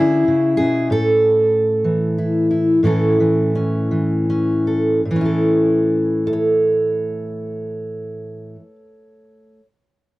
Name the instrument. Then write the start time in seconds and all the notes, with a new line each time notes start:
steel-string acoustic guitar
Already playing: D3 C#4 G#4
0.00 E4
0.28 C#3
0.57 B2 G#4
0.90 A2 A4
1.84 E3
2.18 E4
2.51 E4
2.83 A2 E3 C#4 E4 A4
3.20 E3
3.55 C#4
3.91 E3
4.30 C#4
4.67 A4
5.05 A2
5.11 E3
5.16 C#4
5.21 E4
5.25 A4
6.27 A4
6.33 C#5